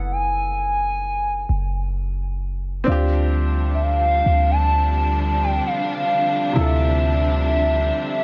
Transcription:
0.00 1.45 F#1 loud
0.00 2.81 B3 medium
0.00 2.83 E4 medium
0.00 2.84 G#4 medium
0.00 2.85 A4 medium
0.00 0.13 F#5 medium
0.12 2.42 G#5 loud
1.49 2.83 F#1 loud
2.84 4.22 D2 loud
2.84 8.24 C3 medium
2.84 8.24 D3 medium
2.84 8.24 F3 medium
2.84 8.24 G3 medium
2.84 6.51 C4 medium
2.84 6.52 D4 medium
2.84 8.24 D4 medium
2.89 6.53 F4 medium
2.89 6.55 G4 medium
3.74 3.83 E5 medium
3.82 4.52 F5 loud
4.26 5.60 D2 loud
4.51 5.42 A5 loud
5.43 5.63 G5 loud
5.66 6.60 F5 loud
6.53 7.91 D2 loud
6.53 8.24 C3 medium
6.53 8.24 E4 medium
6.58 8.24 F4 medium
6.58 8.24 A4 medium
6.58 8.24 E5 loud

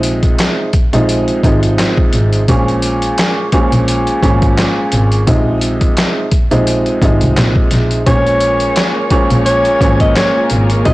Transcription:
0.00 0.26 A#1 loud
0.00 0.66 C3 medium
0.00 0.66 F3 medium
0.00 0.66 G#3 medium
0.00 0.66 D#4 loud
0.00 closed hi-hat medium
0.23 kick medium
0.23 closed hi-hat medium
0.39 snare loud
0.39 clap medium
0.39 closed hi-hat loud
0.73 kick loud
0.73 closed hi-hat medium
0.93 1.06 A#1 medium
0.93 1.40 C3 medium
0.93 1.40 F3 medium
0.93 1.40 G#3 medium
0.93 1.40 D#4 loud
0.93 closed hi-hat medium
1.09 closed hi-hat medium
1.28 closed hi-hat soft
1.43 1.72 G#1 loud
1.43 2.41 C3 loud
1.43 2.41 F3 medium
1.43 2.41 G#3 medium
1.43 2.41 D#4 loud
1.43 kick loud
1.43 closed hi-hat medium
1.63 closed hi-hat medium
1.79 snare loud
1.79 clap medium
1.79 closed hi-hat medium
1.98 kick loud
2.13 2.42 G#1 medium
2.13 closed hi-hat medium
2.33 closed hi-hat medium
2.48 3.05 A#1 loud
2.48 3.45 A#2 medium
2.48 3.45 F3 medium
2.48 3.46 G#3 medium
2.48 3.46 C#4 loud
2.48 kick loud
2.48 closed hi-hat loud
2.68 closed hi-hat soft
2.82 closed hi-hat medium
3.02 closed hi-hat medium
3.18 snare loud
3.18 clap medium
3.18 closed hi-hat medium
3.52 4.18 A#2 loud
3.52 4.18 F3 medium
3.52 4.18 G#3 loud
3.52 4.18 C#4 loud
3.52 kick loud
3.52 closed hi-hat medium
3.72 3.85 A#1 loud
3.72 closed hi-hat medium
3.88 closed hi-hat medium
4.07 closed hi-hat soft
4.22 4.51 G#1 medium
4.22 5.19 A#2 loud
4.22 5.20 F3 medium
4.22 5.20 G#3 medium
4.22 5.20 C#4 loud
4.22 kick loud
4.22 closed hi-hat medium
4.42 kick medium
4.42 closed hi-hat medium
4.58 snare loud
4.58 clap medium
4.58 closed hi-hat medium
4.92 5.21 G#1 loud
4.92 closed hi-hat medium
5.12 closed hi-hat soft
5.27 5.84 A#1 loud
5.27 6.24 C3 loud
5.27 6.24 F3 medium
5.27 6.24 G#3 medium
5.27 6.24 D#4 loud
5.27 kick loud
5.27 closed hi-hat loud
5.61 closed hi-hat medium
5.81 kick medium
5.81 closed hi-hat medium
5.97 snare loud
5.97 clap medium
5.97 closed hi-hat loud
6.31 kick loud
6.31 closed hi-hat medium
6.51 6.64 A#1 medium
6.51 6.98 C3 medium
6.51 6.98 F3 medium
6.51 6.98 G#3 medium
6.51 6.98 D#4 loud
6.51 closed hi-hat medium
6.67 closed hi-hat medium
6.86 closed hi-hat soft
7.02 7.17 G#1 medium
7.02 7.99 C3 loud
7.02 7.99 F3 medium
7.02 7.99 G#3 medium
7.02 7.99 D#4 loud
7.02 kick loud
7.02 closed hi-hat medium
7.21 7.34 C2 medium
7.21 closed hi-hat medium
7.37 7.66 A#2 loud
7.37 snare loud
7.37 clap medium
7.37 closed hi-hat medium
7.56 kick loud
7.71 8.00 A#1 loud
7.71 snare soft
7.71 closed hi-hat medium
7.91 closed hi-hat medium
8.06 8.63 A#1 loud
8.06 9.03 A#2 medium
8.06 9.03 F3 medium
8.06 9.04 G#3 medium
8.06 10.94 A#3 medium
8.06 9.04 C#4 loud
8.06 10.94 F4 medium
8.06 10.94 G#4 medium
8.06 10.94 A#4 medium
8.06 10.83 C#5 medium
8.06 8.91 C#5 loud
8.06 kick loud
8.06 closed hi-hat loud
8.26 closed hi-hat soft
8.40 closed hi-hat medium
8.60 closed hi-hat medium
8.76 snare loud
8.76 clap medium
8.76 closed hi-hat medium
9.10 9.76 A#2 loud
9.10 9.76 F3 medium
9.10 9.76 G#3 medium
9.10 9.76 C#4 loud
9.10 kick loud
9.10 closed hi-hat medium
9.30 9.43 A#1 loud
9.30 closed hi-hat medium
9.46 9.96 C#5 medium
9.46 closed hi-hat medium
9.65 closed hi-hat soft
9.80 10.09 G#1 loud
9.80 10.77 A#2 loud
9.80 10.78 F3 medium
9.80 10.78 G#3 medium
9.80 10.78 C#4 loud
9.80 kick loud
9.80 closed hi-hat medium
10.00 10.15 D#5 medium
10.00 kick loud
10.00 closed hi-hat medium
10.16 10.48 C#5 medium
10.16 snare loud
10.16 clap medium
10.16 closed hi-hat medium
10.50 10.79 G#1 loud
10.50 closed hi-hat medium
10.70 closed hi-hat medium
10.85 10.94 A#1 loud
10.85 10.94 C3 medium
10.85 10.94 F3 medium
10.85 10.94 G#3 medium
10.85 10.94 D#4 loud
10.85 10.94 D#5 loud
10.85 kick loud
10.85 closed hi-hat loud

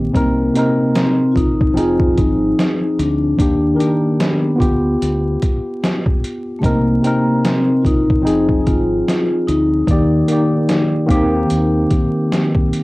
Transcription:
0.00 0.16 D#3 medium
0.00 0.16 A#3 medium
0.00 0.13 C4 medium
0.00 0.16 G4 medium
0.12 0.49 C2 medium
0.12 0.50 C3 medium
0.12 0.51 C4 medium
0.12 0.52 D#4 medium
0.12 kick loud
0.12 closed hi-hat medium
0.16 0.92 A#3 medium
0.16 0.53 A#4 medium
0.54 1.76 C3 medium
0.54 1.74 C4 medium
0.54 1.76 D#4 medium
0.54 closed hi-hat medium
0.58 1.78 A#4 medium
0.95 1.33 C4 medium
0.95 snare loud
0.95 closed hi-hat medium
1.32 1.37 F4 medium
1.32 kick medium
1.36 1.78 A#1 medium
1.36 1.78 D#4 medium
1.36 closed hi-hat medium
1.61 kick loud
1.74 3.23 F3 medium
1.74 3.24 C4 medium
1.74 3.25 D#4 medium
1.74 2.15 F4 loud
1.74 closed hi-hat medium
1.78 2.11 F1 loud
1.78 3.26 G#4 medium
2.00 kick medium
2.18 2.52 G#1 medium
2.18 3.01 D#4 loud
2.18 kick medium
2.18 closed hi-hat medium
2.59 snare loud
2.59 closed hi-hat medium
2.99 3.33 D2 loud
2.99 3.76 D4 loud
2.99 closed hi-hat medium
3.37 3.73 D#2 loud
3.37 3.73 D#3 medium
3.37 3.75 A#3 medium
3.37 3.76 D4 medium
3.37 kick loud
3.37 closed hi-hat medium
3.41 3.77 G4 medium
3.75 4.58 D#3 medium
3.75 4.60 D4 medium
3.75 4.59 A#4 medium
3.80 4.22 A#3 medium
3.80 4.59 G4 medium
3.80 closed hi-hat medium
4.20 5.39 B3 medium
4.20 snare loud
4.20 closed hi-hat medium
4.56 6.06 B3 medium
4.56 6.08 F4 medium
4.60 4.95 D2 medium
4.60 6.09 G4 medium
4.60 kick medium
4.60 closed hi-hat medium
5.02 5.36 D2 medium
5.02 closed hi-hat loud
5.42 kick medium
5.42 closed hi-hat medium
5.84 snare loud
5.84 closed hi-hat medium
6.06 kick loud
6.24 closed hi-hat medium
6.59 6.99 C3 medium
6.59 6.64 A3 medium
6.59 7.00 C4 medium
6.63 6.97 C2 medium
6.63 7.47 A#3 medium
6.63 7.00 D#4 medium
6.63 7.01 A#4 medium
6.63 kick loud
6.63 closed hi-hat medium
7.02 8.25 C3 medium
7.02 8.22 C4 medium
7.02 8.23 D#4 medium
7.02 closed hi-hat medium
7.07 8.27 A#4 medium
7.45 7.81 C4 medium
7.45 snare loud
7.45 closed hi-hat medium
7.82 8.19 A#1 medium
7.82 7.86 F4 medium
7.82 kick medium
7.82 closed hi-hat medium
7.86 8.25 D#4 loud
8.10 kick medium
8.22 9.72 F3 medium
8.22 9.72 C4 medium
8.22 9.73 D#4 medium
8.26 8.60 F1 medium
8.26 8.64 D#4 loud
8.26 9.74 G#4 medium
8.26 closed hi-hat loud
8.49 kick medium
8.66 9.01 G#1 medium
8.66 9.50 F4 medium
8.66 kick medium
8.66 closed hi-hat medium
9.08 snare loud
9.08 closed hi-hat medium
9.47 9.82 D2 loud
9.47 11.86 D#4 medium
9.47 closed hi-hat medium
9.87 10.22 D#2 medium
9.87 10.25 D#3 medium
9.87 10.25 A#3 medium
9.87 10.26 D5 medium
9.87 kick loud
9.87 closed hi-hat medium
9.93 10.27 G4 medium
10.28 11.05 D#3 medium
10.28 11.07 A#3 medium
10.28 11.11 D5 medium
10.28 closed hi-hat medium
10.33 11.10 G4 medium
10.69 snare loud
10.69 closed hi-hat medium
11.06 11.43 D#2 medium
11.06 12.56 D#3 medium
11.06 12.57 A#3 medium
11.06 12.57 C4 medium
11.06 kick medium
11.10 12.58 G4 loud
11.10 closed hi-hat medium
11.50 11.84 D#2 medium
11.50 closed hi-hat medium
11.91 kick medium
11.91 closed hi-hat medium
12.32 snare medium
12.32 closed hi-hat medium
12.55 kick loud
12.73 closed hi-hat medium

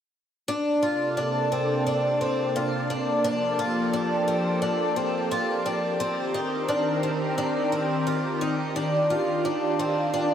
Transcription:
0.48 3.21 C3 medium
0.48 5.96 A#3 medium
0.48 0.83 D4 medium
0.48 3.22 D4 medium
0.48 3.22 A4 medium
0.83 1.17 F4 medium
1.17 1.52 D4 medium
1.52 1.86 C4 medium
1.87 2.21 D4 medium
2.21 2.55 C4 medium
2.56 2.90 F4 medium
2.90 3.23 D4 medium
3.23 5.97 F3 medium
3.23 3.59 D4 medium
3.23 10.34 G4 medium
3.23 5.97 A4 medium
3.59 3.93 F4 medium
3.94 4.27 D4 medium
4.28 4.62 C4 medium
4.62 4.96 D4 medium
4.96 5.31 C4 medium
5.31 5.66 F4 medium
5.66 6.00 D4 medium
6.00 10.34 D#3 medium
6.00 8.73 C4 medium
6.00 6.34 C4 medium
6.00 8.73 A#4 medium
6.34 6.68 D#4 medium
6.69 7.03 D4 medium
7.03 7.37 C4 medium
7.38 7.72 D4 medium
7.72 8.07 C4 medium
8.07 8.41 F4 medium
8.41 8.76 D#4 medium
8.75 10.34 D4 medium
8.75 9.10 D4 medium
8.75 10.34 F4 medium
9.10 9.45 F4 medium
9.45 9.79 D4 medium
9.79 10.13 C4 medium
10.14 10.34 D4 medium

